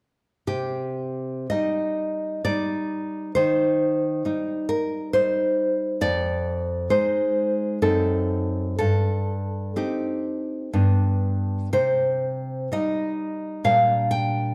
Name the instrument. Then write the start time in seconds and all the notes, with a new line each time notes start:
nylon-string guitar
0.47 C3 G4
1.50 G3 D#4 D#5
2.45 G3 D#4 D5
3.35 D#3 C5
4.25 G3 D#4
4.69 A#4
5.13 G3 D#4 C5
6.01 F2 D5
6.90 G#3 D#4 C5
7.82 F#2 C4 D#4 A4
8.79 G2 A4
9.76 C4 D#4 G4
10.73 G2 B3 D4
11.73 C3 C5
12.72 G3 D#4 D#5
13.64 A#2 G3 D4 F5
14.11 G5